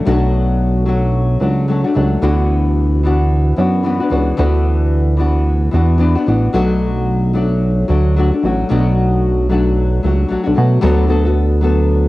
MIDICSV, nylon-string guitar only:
0, 0, Header, 1, 2, 480
1, 0, Start_track
1, 0, Key_signature, 2, "major"
1, 0, Tempo, 538117
1, 62, Time_signature, 4, 2, 24, 8
1, 10779, End_track
2, 0, Start_track
2, 0, Title_t, "Nylon-string guitar"
2, 0, Program_c, 0, 24
2, 47, Note_on_c, 0, 47, 71
2, 57, Note_on_c, 0, 54, 85
2, 57, Note_on_c, 0, 57, 89
2, 66, Note_on_c, 0, 62, 88
2, 73, Note_on_c, 0, 66, 86
2, 763, Note_off_c, 0, 54, 0
2, 767, Note_on_c, 0, 54, 61
2, 776, Note_off_c, 0, 47, 0
2, 777, Note_off_c, 0, 57, 0
2, 780, Note_on_c, 0, 57, 56
2, 781, Note_off_c, 0, 62, 0
2, 784, Note_on_c, 0, 62, 58
2, 790, Note_off_c, 0, 66, 0
2, 794, Note_on_c, 0, 66, 65
2, 1245, Note_off_c, 0, 54, 0
2, 1249, Note_on_c, 0, 54, 52
2, 1254, Note_off_c, 0, 57, 0
2, 1258, Note_on_c, 0, 57, 59
2, 1265, Note_off_c, 0, 62, 0
2, 1269, Note_on_c, 0, 62, 59
2, 1271, Note_off_c, 0, 66, 0
2, 1274, Note_on_c, 0, 66, 65
2, 1487, Note_off_c, 0, 54, 0
2, 1497, Note_on_c, 0, 54, 60
2, 1498, Note_off_c, 0, 57, 0
2, 1507, Note_off_c, 0, 62, 0
2, 1509, Note_on_c, 0, 57, 58
2, 1510, Note_off_c, 0, 66, 0
2, 1517, Note_on_c, 0, 62, 66
2, 1523, Note_on_c, 0, 66, 60
2, 1632, Note_off_c, 0, 66, 0
2, 1643, Note_on_c, 0, 66, 42
2, 1645, Note_off_c, 0, 54, 0
2, 1645, Note_off_c, 0, 62, 0
2, 1651, Note_off_c, 0, 57, 0
2, 1655, Note_on_c, 0, 62, 49
2, 1670, Note_on_c, 0, 57, 39
2, 1728, Note_off_c, 0, 57, 0
2, 1732, Note_on_c, 0, 54, 47
2, 1735, Note_off_c, 0, 62, 0
2, 1739, Note_on_c, 0, 57, 59
2, 1742, Note_off_c, 0, 66, 0
2, 1746, Note_on_c, 0, 62, 59
2, 1754, Note_on_c, 0, 66, 59
2, 1976, Note_off_c, 0, 62, 0
2, 1976, Note_on_c, 0, 50, 74
2, 1977, Note_off_c, 0, 54, 0
2, 1981, Note_on_c, 0, 52, 78
2, 1982, Note_off_c, 0, 57, 0
2, 1983, Note_off_c, 0, 66, 0
2, 1987, Note_on_c, 0, 62, 93
2, 1990, Note_on_c, 0, 59, 87
2, 1994, Note_on_c, 0, 66, 88
2, 2693, Note_off_c, 0, 52, 0
2, 2704, Note_on_c, 0, 52, 48
2, 2714, Note_off_c, 0, 59, 0
2, 2717, Note_on_c, 0, 59, 58
2, 2720, Note_off_c, 0, 62, 0
2, 2724, Note_on_c, 0, 62, 61
2, 2730, Note_off_c, 0, 66, 0
2, 2731, Note_off_c, 0, 50, 0
2, 2734, Note_on_c, 0, 66, 74
2, 3167, Note_off_c, 0, 52, 0
2, 3178, Note_on_c, 0, 52, 54
2, 3181, Note_off_c, 0, 59, 0
2, 3184, Note_on_c, 0, 59, 62
2, 3190, Note_off_c, 0, 62, 0
2, 3193, Note_on_c, 0, 62, 63
2, 3202, Note_off_c, 0, 66, 0
2, 3206, Note_on_c, 0, 66, 70
2, 3407, Note_off_c, 0, 52, 0
2, 3418, Note_on_c, 0, 52, 57
2, 3420, Note_off_c, 0, 59, 0
2, 3431, Note_off_c, 0, 62, 0
2, 3431, Note_on_c, 0, 59, 59
2, 3434, Note_off_c, 0, 66, 0
2, 3441, Note_on_c, 0, 62, 56
2, 3445, Note_on_c, 0, 66, 67
2, 3558, Note_off_c, 0, 66, 0
2, 3567, Note_off_c, 0, 52, 0
2, 3569, Note_on_c, 0, 66, 56
2, 3574, Note_off_c, 0, 59, 0
2, 3574, Note_off_c, 0, 62, 0
2, 3584, Note_on_c, 0, 62, 44
2, 3593, Note_on_c, 0, 59, 45
2, 3651, Note_off_c, 0, 59, 0
2, 3651, Note_on_c, 0, 52, 59
2, 3659, Note_off_c, 0, 62, 0
2, 3662, Note_on_c, 0, 59, 58
2, 3667, Note_off_c, 0, 66, 0
2, 3670, Note_on_c, 0, 62, 57
2, 3678, Note_on_c, 0, 66, 67
2, 3893, Note_off_c, 0, 52, 0
2, 3894, Note_off_c, 0, 59, 0
2, 3896, Note_on_c, 0, 50, 83
2, 3900, Note_off_c, 0, 62, 0
2, 3904, Note_on_c, 0, 52, 84
2, 3904, Note_on_c, 0, 59, 85
2, 3905, Note_off_c, 0, 66, 0
2, 3910, Note_on_c, 0, 62, 83
2, 3915, Note_on_c, 0, 66, 88
2, 4601, Note_off_c, 0, 52, 0
2, 4611, Note_on_c, 0, 52, 56
2, 4621, Note_off_c, 0, 59, 0
2, 4625, Note_on_c, 0, 59, 59
2, 4632, Note_off_c, 0, 62, 0
2, 4635, Note_on_c, 0, 62, 61
2, 4638, Note_off_c, 0, 50, 0
2, 4638, Note_off_c, 0, 66, 0
2, 4644, Note_on_c, 0, 66, 65
2, 5084, Note_off_c, 0, 52, 0
2, 5095, Note_on_c, 0, 52, 57
2, 5103, Note_off_c, 0, 59, 0
2, 5106, Note_on_c, 0, 59, 60
2, 5115, Note_off_c, 0, 62, 0
2, 5119, Note_on_c, 0, 62, 67
2, 5121, Note_off_c, 0, 66, 0
2, 5125, Note_on_c, 0, 66, 69
2, 5323, Note_off_c, 0, 52, 0
2, 5333, Note_on_c, 0, 52, 65
2, 5336, Note_off_c, 0, 59, 0
2, 5345, Note_off_c, 0, 62, 0
2, 5347, Note_on_c, 0, 59, 63
2, 5352, Note_off_c, 0, 66, 0
2, 5356, Note_on_c, 0, 62, 71
2, 5362, Note_on_c, 0, 66, 64
2, 5480, Note_off_c, 0, 66, 0
2, 5487, Note_off_c, 0, 52, 0
2, 5490, Note_on_c, 0, 66, 57
2, 5494, Note_off_c, 0, 59, 0
2, 5495, Note_off_c, 0, 62, 0
2, 5505, Note_on_c, 0, 62, 43
2, 5520, Note_on_c, 0, 59, 38
2, 5584, Note_off_c, 0, 59, 0
2, 5586, Note_on_c, 0, 52, 55
2, 5589, Note_off_c, 0, 66, 0
2, 5592, Note_off_c, 0, 62, 0
2, 5595, Note_on_c, 0, 59, 57
2, 5603, Note_on_c, 0, 62, 61
2, 5611, Note_on_c, 0, 66, 57
2, 5826, Note_on_c, 0, 47, 72
2, 5829, Note_off_c, 0, 52, 0
2, 5830, Note_off_c, 0, 59, 0
2, 5830, Note_off_c, 0, 62, 0
2, 5833, Note_off_c, 0, 66, 0
2, 5833, Note_on_c, 0, 54, 86
2, 5834, Note_on_c, 0, 57, 80
2, 5841, Note_on_c, 0, 62, 87
2, 5844, Note_on_c, 0, 66, 83
2, 6539, Note_off_c, 0, 54, 0
2, 6543, Note_on_c, 0, 54, 57
2, 6550, Note_off_c, 0, 47, 0
2, 6550, Note_off_c, 0, 57, 0
2, 6553, Note_on_c, 0, 57, 59
2, 6557, Note_off_c, 0, 62, 0
2, 6560, Note_on_c, 0, 62, 64
2, 6567, Note_off_c, 0, 66, 0
2, 6571, Note_on_c, 0, 66, 69
2, 7026, Note_off_c, 0, 54, 0
2, 7029, Note_on_c, 0, 54, 63
2, 7036, Note_off_c, 0, 57, 0
2, 7039, Note_on_c, 0, 57, 67
2, 7044, Note_off_c, 0, 62, 0
2, 7047, Note_on_c, 0, 62, 62
2, 7050, Note_off_c, 0, 66, 0
2, 7054, Note_on_c, 0, 66, 63
2, 7271, Note_off_c, 0, 54, 0
2, 7276, Note_off_c, 0, 57, 0
2, 7280, Note_off_c, 0, 62, 0
2, 7280, Note_on_c, 0, 54, 61
2, 7283, Note_off_c, 0, 66, 0
2, 7291, Note_on_c, 0, 57, 68
2, 7299, Note_on_c, 0, 62, 64
2, 7308, Note_on_c, 0, 66, 60
2, 7406, Note_off_c, 0, 66, 0
2, 7417, Note_on_c, 0, 66, 50
2, 7420, Note_off_c, 0, 54, 0
2, 7425, Note_off_c, 0, 62, 0
2, 7426, Note_off_c, 0, 57, 0
2, 7435, Note_on_c, 0, 62, 50
2, 7448, Note_on_c, 0, 57, 41
2, 7512, Note_on_c, 0, 54, 58
2, 7513, Note_off_c, 0, 66, 0
2, 7517, Note_off_c, 0, 57, 0
2, 7522, Note_off_c, 0, 62, 0
2, 7528, Note_on_c, 0, 57, 51
2, 7536, Note_on_c, 0, 62, 59
2, 7541, Note_on_c, 0, 66, 68
2, 7745, Note_off_c, 0, 54, 0
2, 7748, Note_on_c, 0, 47, 82
2, 7749, Note_off_c, 0, 57, 0
2, 7755, Note_on_c, 0, 54, 85
2, 7758, Note_off_c, 0, 62, 0
2, 7758, Note_off_c, 0, 66, 0
2, 7760, Note_on_c, 0, 57, 72
2, 7768, Note_on_c, 0, 62, 82
2, 7769, Note_on_c, 0, 66, 89
2, 8463, Note_off_c, 0, 54, 0
2, 8466, Note_on_c, 0, 54, 62
2, 8468, Note_off_c, 0, 47, 0
2, 8471, Note_off_c, 0, 57, 0
2, 8475, Note_on_c, 0, 57, 59
2, 8480, Note_off_c, 0, 62, 0
2, 8484, Note_on_c, 0, 62, 58
2, 8488, Note_off_c, 0, 66, 0
2, 8492, Note_on_c, 0, 66, 60
2, 8942, Note_off_c, 0, 54, 0
2, 8945, Note_on_c, 0, 54, 60
2, 8952, Note_off_c, 0, 57, 0
2, 8956, Note_on_c, 0, 57, 62
2, 8958, Note_off_c, 0, 62, 0
2, 8961, Note_on_c, 0, 62, 58
2, 8968, Note_off_c, 0, 66, 0
2, 8972, Note_on_c, 0, 66, 67
2, 9162, Note_off_c, 0, 54, 0
2, 9172, Note_on_c, 0, 54, 57
2, 9175, Note_off_c, 0, 57, 0
2, 9181, Note_off_c, 0, 62, 0
2, 9186, Note_on_c, 0, 57, 57
2, 9191, Note_on_c, 0, 62, 67
2, 9195, Note_off_c, 0, 66, 0
2, 9206, Note_on_c, 0, 66, 63
2, 9298, Note_off_c, 0, 66, 0
2, 9309, Note_on_c, 0, 66, 53
2, 9317, Note_off_c, 0, 62, 0
2, 9323, Note_off_c, 0, 54, 0
2, 9325, Note_off_c, 0, 57, 0
2, 9327, Note_on_c, 0, 62, 46
2, 9335, Note_on_c, 0, 57, 38
2, 9405, Note_off_c, 0, 57, 0
2, 9408, Note_on_c, 0, 54, 63
2, 9413, Note_off_c, 0, 62, 0
2, 9415, Note_off_c, 0, 66, 0
2, 9415, Note_on_c, 0, 57, 52
2, 9424, Note_on_c, 0, 62, 57
2, 9431, Note_on_c, 0, 66, 70
2, 9639, Note_off_c, 0, 54, 0
2, 9643, Note_on_c, 0, 50, 91
2, 9646, Note_off_c, 0, 66, 0
2, 9650, Note_on_c, 0, 54, 81
2, 9653, Note_off_c, 0, 57, 0
2, 9653, Note_off_c, 0, 62, 0
2, 9656, Note_on_c, 0, 66, 94
2, 9657, Note_on_c, 0, 59, 86
2, 9662, Note_on_c, 0, 69, 84
2, 9865, Note_off_c, 0, 54, 0
2, 9875, Note_on_c, 0, 54, 59
2, 9876, Note_off_c, 0, 59, 0
2, 9883, Note_off_c, 0, 66, 0
2, 9887, Note_on_c, 0, 59, 64
2, 9891, Note_off_c, 0, 69, 0
2, 9893, Note_off_c, 0, 50, 0
2, 9894, Note_on_c, 0, 66, 66
2, 9901, Note_on_c, 0, 69, 76
2, 10024, Note_off_c, 0, 69, 0
2, 10033, Note_off_c, 0, 54, 0
2, 10034, Note_on_c, 0, 69, 46
2, 10038, Note_off_c, 0, 59, 0
2, 10039, Note_off_c, 0, 66, 0
2, 10050, Note_on_c, 0, 66, 50
2, 10060, Note_on_c, 0, 59, 43
2, 10358, Note_on_c, 0, 54, 59
2, 10361, Note_off_c, 0, 59, 0
2, 10368, Note_off_c, 0, 66, 0
2, 10372, Note_on_c, 0, 59, 65
2, 10375, Note_off_c, 0, 69, 0
2, 10379, Note_on_c, 0, 66, 63
2, 10386, Note_on_c, 0, 69, 75
2, 10779, Note_off_c, 0, 54, 0
2, 10779, Note_off_c, 0, 59, 0
2, 10779, Note_off_c, 0, 66, 0
2, 10779, Note_off_c, 0, 69, 0
2, 10779, End_track
0, 0, End_of_file